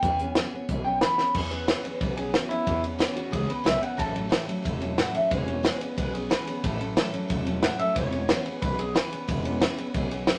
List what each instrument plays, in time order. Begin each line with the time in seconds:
Already playing: clean electric guitar G5
0.03 upright bass E2, steel-string acoustic guitar E3 B3 C#4 G#4, kick, closed hi-hat
0.19 steel-string acoustic guitar B3 C#4 G#4, closed hi-hat
0.35 steel-string acoustic guitar E3 B3 C#4 G#4, snare, closed hi-hat
0.53 steel-string acoustic guitar B3 C#4 G#4, muted upright bass stroke
0.69 upright bass B1, steel-string acoustic guitar E3 B3 C#4 G#4, kick, closed hi-hat
0.85 steel-string acoustic guitar B3 C#4 G#4, clean electric guitar G5
1.01 steel-string acoustic guitar E3 B3 C#4 G#4, clean electric guitar B5, snare, closed hi-hat
1.18 steel-string acoustic guitar B3 C#4 G#4, muted upright bass stroke, snare
1.34 upright bass E2, steel-string acoustic guitar E3 B3 C#4 G#4, kick, crash
1.51 steel-string acoustic guitar B3 C#4 G#4, clean electric guitar B4, ride
1.68 steel-string acoustic guitar E3 B3 C#4 G#4, snare, ride
1.84 steel-string acoustic guitar B3 C#4 G#4, muted upright bass stroke, ride
2.01 upright bass B1, steel-string acoustic guitar E3 B3 C#4 G#4, kick, ride
2.17 steel-string acoustic guitar B3 C#4 G#4, clean electric guitar G#4, ride
2.34 steel-string acoustic guitar E3 B3 C#4 G#4, clean electric guitar F#4, snare, ride
2.49 steel-string acoustic guitar B3 C#4 G#4, clean electric guitar E4, muted upright bass stroke, ride
2.66 upright bass E2, steel-string acoustic guitar E3 B3 C#4 G#4, kick, ride
2.83 steel-string acoustic guitar B3 C#4 G#4, ride
2.99 steel-string acoustic guitar E3 B3 C#4 G#4, snare, ride
3.15 steel-string acoustic guitar B3 C#4 G#4, clean electric guitar F#4, muted upright bass stroke, ride
3.31 upright bass C#2, steel-string acoustic guitar E3 B3 C#4 G#4, clean electric guitar G#4, kick, ride
3.47 steel-string acoustic guitar B3 C#4 G#4, clean electric guitar B4, muted upright bass stroke, ride
3.64 upright bass B1, steel-string acoustic guitar E3 B3 C#4 G#4, clean electric guitar E5, snare, ride
3.81 steel-string acoustic guitar B3 C#4 G#4, clean electric guitar F#5, ride
3.97 upright bass A1, steel-string acoustic guitar A2 E3 F#3 A3 C#4 A4, clean electric guitar A5, kick, ride
4.13 steel-string acoustic guitar F#3 A3 C#4 A4, ride
4.29 steel-string acoustic guitar A2 E3 F#3 A3 C#4 A4, snare, ride
4.46 steel-string acoustic guitar F#3 A3 C#4 A4, muted upright bass stroke, ride
4.62 upright bass E1, steel-string acoustic guitar F#3 A3 C#4 A4, kick, ride
4.80 steel-string acoustic guitar F#3 A3 C#4 A4, ride
4.98 steel-string acoustic guitar A2 E3 F#3 A3 C#4 A4, clean electric guitar F#5, snare, ride
5.14 steel-string acoustic guitar F#3 A3 C#4 A4, clean electric guitar E5, muted upright bass stroke, ride
5.30 upright bass E1, steel-string acoustic guitar E3 G#3 B3 C#4 G#4, clean electric guitar C#5, kick, ride
5.46 steel-string acoustic guitar B3 C#4 G#4, ride
5.63 steel-string acoustic guitar E3 G#3 B3 C#4 G#4, snare, ride
5.80 steel-string acoustic guitar B3 C#4 G#4, clean electric guitar B4, muted upright bass stroke, ride
5.97 upright bass B1, steel-string acoustic guitar G#3 B3 C#4 G#4, clean electric guitar B4, kick, ride
6.13 steel-string acoustic guitar B3 C#4 G#4, clean electric guitar G#4, ride
6.30 steel-string acoustic guitar E3 G#3 B3 C#4 G#4, clean electric guitar B4, snare, ride
6.47 steel-string acoustic guitar B3 C#4 G#4, muted upright bass stroke, ride
6.64 upright bass A1, steel-string acoustic guitar A2 E3 F#3 A3 C#4 A4, kick, ride
6.79 steel-string acoustic guitar F#3 A3 C#4 A4, ride
6.96 steel-string acoustic guitar A2 E3 F#3 A3 C#4 A4, snare, ride
7.12 steel-string acoustic guitar F#3 A3 C#4 A4, muted upright bass stroke, ride
7.28 upright bass E1, steel-string acoustic guitar F#3 A3 C#4 A4, kick, ride
7.45 steel-string acoustic guitar F#3 A3 C#4 A4, ride
7.62 steel-string acoustic guitar A2 E3 F#3 A3 C#4 A4, clean electric guitar F#5, snare, ride
7.79 steel-string acoustic guitar F#3 A3 C#4 A4, clean electric guitar E5, muted upright bass stroke, ride
7.95 upright bass E1, steel-string acoustic guitar E3 B3 C#4 G#4, clean electric guitar C#5, kick, ride
8.12 steel-string acoustic guitar B3 C#4 G#4, ride
8.28 steel-string acoustic guitar E3 B3 C#4 G#4, snare, ride
8.45 steel-string acoustic guitar B3 C#4 G#4, clean electric guitar B4, muted upright bass stroke, ride
8.62 upright bass B1, steel-string acoustic guitar E3 B3 C#4 G#4, clean electric guitar B4, kick, ride
8.78 steel-string acoustic guitar B3 C#4 G#4, clean electric guitar G#4, ride
8.95 steel-string acoustic guitar E3 B3 C#4 G#4, clean electric guitar B4, snare, ride
9.11 steel-string acoustic guitar B3 C#4 G#4, muted upright bass stroke, ride
9.28 upright bass E1, steel-string acoustic guitar E3 B3 C#4 G#4, kick, ride
9.44 steel-string acoustic guitar B3 C#4 G#4, ride
9.60 steel-string acoustic guitar E3 B3 C#4 G#4, snare, ride
9.78 steel-string acoustic guitar B3 C#4 G#4, muted upright bass stroke, ride
9.94 upright bass B1, steel-string acoustic guitar E3 B3 C#4 G#4, kick, ride
10.11 steel-string acoustic guitar B3 C#4 G#4, ride
10.27 steel-string acoustic guitar E3 B3 C#4 G#4, snare, ride